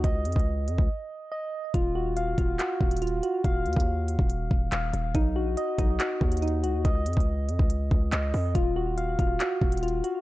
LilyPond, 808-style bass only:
\new Staff \with { instrumentName = "808-style bass" } { \clef bass \time 4/4 \key ees \minor \tempo 4 = 141 des,8 f,16 des,8. f,16 des,16 r2 | ees,,4. ees,,8 r8 ees,,4 r8 | ees,,8 ees,16 ees,4 ees,,8. ees,,8 ees,,8 ees,,8 | b,,8 bes,,8 r8 b,,8 r8 dis,4 des,16 dis,16 |
des,8 f,16 des,8. f,16 des,8. des,8 des,8 f,8 | ees,,4. ees,,8 r8 ees,,4 r8 | }